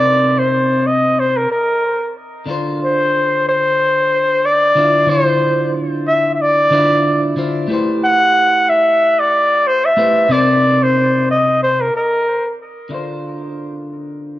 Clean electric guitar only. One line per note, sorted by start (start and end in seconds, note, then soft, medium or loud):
0.00 1.46 C3 medium
0.00 1.46 C4 medium
0.00 1.47 D#4 medium
0.00 1.48 A#4 medium
0.00 1.48 C5 loud
2.46 4.72 D3 medium
2.46 4.72 D4 medium
2.46 2.50 E4 medium
2.46 4.74 F4 medium
2.51 4.74 C5 medium
4.75 5.05 D3 medium
4.75 5.05 D4 medium
4.75 5.06 E4 medium
4.75 5.06 F4 medium
4.75 5.06 C5 medium
5.06 6.67 D3 medium
5.06 6.68 D4 medium
5.06 6.69 E4 medium
5.06 6.69 F4 medium
5.11 6.70 C5 medium
6.70 7.33 D3 medium
6.70 7.34 D4 medium
6.70 7.34 E4 medium
6.70 7.34 F4 medium
6.70 7.34 C5 medium
7.36 7.66 D3 medium
7.36 7.66 D4 medium
7.36 7.66 E4 medium
7.36 7.67 F4 medium
7.36 7.67 C5 medium
7.68 9.94 A3 medium
7.68 9.94 E4 medium
7.68 9.95 G4 medium
7.68 9.95 B4 medium
7.73 9.96 C5 medium
9.97 10.27 A3 medium
9.97 10.27 E4 medium
9.97 10.27 G4 medium
9.97 10.27 B4 medium
9.97 10.28 C5 loud
10.29 11.89 C3 medium
10.29 11.90 C4 medium
10.29 11.90 D#4 medium
10.29 11.91 A#4 medium
10.34 11.92 C5 medium
12.89 14.39 D3 medium
12.89 14.39 D4 medium
12.89 12.94 E4 medium
12.89 14.39 F4 medium
12.94 14.39 C5 medium